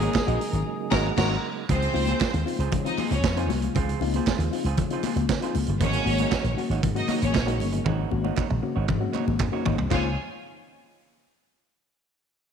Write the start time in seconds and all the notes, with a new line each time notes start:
Already playing: C#3 F#3 G#3 A#3 D#4 G#4 A#4 A#5
0.02 A#3 D#4 F#4 C#5, closed hi-hat, high conga
0.14 muted clean electric guitar stroke, kick, snare, clap
0.26 A#1 A#3 C#4 D#4 F#4 D#5, closed hi-hat
0.41 muted clean electric guitar stroke, open hi-hat
0.53 G#1 G#2 D#3, muted clean electric guitar stroke, closed hi-hat
0.91 G#1 A#3 C#4 D#4 F#4 A#4 D#5 A#5, kick, snare, crash
1.16 G#1 A#3 C#4 D#4 F#4 A#4 C#5 A#5, kick, snare, crash
1.69 C#2 C#3 F3 G#3 C4 F4 G#4 C5, kick, closed hi-hat, muted conga, low conga
1.82 D#4 F4, closed hi-hat
1.93 C#2 C4 D#4 F4, muted clean electric guitar stroke, open hi-hat, muted conga, high conga
2.07 C4 F4 G#4 C5, closed hi-hat, high conga
2.20 C4 D#4 F4 G#4 C5, kick, snare, clap
2.33 D#2 C#3 G#3, muted clean electric guitar stroke, closed hi-hat
2.46 C4 D#4 F4, muted clean electric guitar stroke, open hi-hat, muted conga
2.59 C#2 C4 F4 G#4 C5, closed hi-hat
2.72 C#3 G#3, muted clean electric guitar stroke, kick, closed hi-hat, low conga
2.84 C4 D#4 F4 D#5, muted clean electric guitar stroke, closed hi-hat
2.97 C4 D#4 F4 G#4 C5, clap, open hi-hat, high conga
3.11 C#2 C#4 C#5, muted clean electric guitar stroke, closed hi-hat, high conga
3.23 F2, muted clean electric guitar stroke, kick, snare, clap, muted conga
3.37 C4 D#4 F4 G#4 C5, closed hi-hat
3.50 C2, muted clean electric guitar stroke, snare, open hi-hat, muted conga, high conga
3.62 C#3 G#3, muted clean electric guitar stroke, closed hi-hat
3.75 C#2 C#3 G#3 C4 F4 G#4 C5, kick, closed hi-hat, muted conga, low conga
3.88 D#4 F4, closed hi-hat
4.01 C#2 C4 D#4 F4, muted clean electric guitar stroke, open hi-hat, muted conga, high conga
4.13 C4 F4 G#4 C5, closed hi-hat, high conga
4.27 C4 D#4 F4 G#4 C5, kick, snare, clap, muted conga
4.38 D#2 C#3 G#3, muted clean electric guitar stroke, closed hi-hat
4.51 C4 D#4 F4, muted clean electric guitar stroke, open hi-hat, muted conga
4.64 C#2 C4 F4 G#4 C5, closed hi-hat
4.77 C#3 G#3, muted clean electric guitar stroke, kick, closed hi-hat, muted conga, low conga
4.90 C4 D#4 F4 G#4 C5, closed hi-hat
4.95 C4
5.03 C4 D#4 F4 G#4 C5, clap, open hi-hat, muted conga, high conga
5.16 C#2, muted clean electric guitar stroke, closed hi-hat, high conga
5.29 C#3, muted clean electric guitar stroke, kick, snare, clap, muted conga
5.41 C4 D#4 F4 G#4 C5, closed hi-hat
5.55 C#2, muted clean electric guitar stroke, open hi-hat, muted conga, high conga
5.66 G1 C#3 G#3, muted clean electric guitar stroke, closed hi-hat
5.80 G#1 G#2 D#3 F#3 A#3 C#4 D#4 F#4 C#5, kick, closed hi-hat, low conga
5.93 C#4 F#4, closed hi-hat
6.05 G#1 A#3 C#4 F#4, muted clean electric guitar stroke, open hi-hat, high conga
6.18 A#3 D#4 F#4 C#5, closed hi-hat, high conga
6.32 A#3 C#4 D#4 F#4 C#5, kick, snare, clap
6.44 A#1 G#2 D#3, muted clean electric guitar stroke, closed hi-hat
6.57 A#3 C#4 F#4, muted clean electric guitar stroke, open hi-hat, muted conga
6.69 G#1 A#3 D#4 F#4 C#5, closed hi-hat
6.82 G#2 D#3, kick, closed hi-hat, muted conga, low conga
6.95 A#3 C#4 D#4 F#4 D#5, muted clean electric guitar stroke, closed hi-hat
7.08 A#3 C#4 D#4 F#4 C#5, clap, open hi-hat, muted conga, high conga
7.22 G#1 C#4 C#5, muted clean electric guitar stroke, closed hi-hat, high conga
7.34 A#1, muted clean electric guitar stroke, kick, snare, clap, muted conga
7.46 A#3 C#4 D#4 F#4 C#5, closed hi-hat
7.60 G1, open hi-hat, high conga
7.72 G#2 D#3, muted clean electric guitar stroke, closed hi-hat
7.84 G#1 G#2 D#3 A#3 C4 D#4 F#4 C#5, kick, high tom, low conga
7.98 C#4 F#4
8.11 G#1 A#3 C#4 F#4, muted clean electric guitar stroke, high conga
8.24 A#3 D#4 F#4 C#5, high conga
8.36 A#3 C#4 D#4 F#4 C#5, kick, clap
8.49 A#1 G#2 D#3, muted clean electric guitar stroke, mid tom
8.62 A#3 C#4 F#4, muted clean electric guitar stroke
8.76 G#1 A#3 D#4 F#4 C#5
8.88 G#2 D#3, muted clean electric guitar stroke, kick, mid tom, muted conga, low conga
9.00 A#3 C#4 F#4, muted clean electric guitar stroke
9.13 A#3 C#4 D#4 F#4 C#5, clap, high conga
9.27 G#1, muted clean electric guitar stroke, high conga
9.40 G#2, muted clean electric guitar stroke, kick, clap, floor tom
9.52 A#3 C#4 D#4 F#4 C#5
9.65 G#1 A#3 D#4 F#4 C#5, floor tom, muted conga, high conga, low conga
9.78 C2 G#2 D#3, muted clean electric guitar stroke, floor tom
9.90 C#2 C#3 F3 G#3 C4 C#4 D#4 F4 C5 C#5 G#5, kick, clap, crash, high conga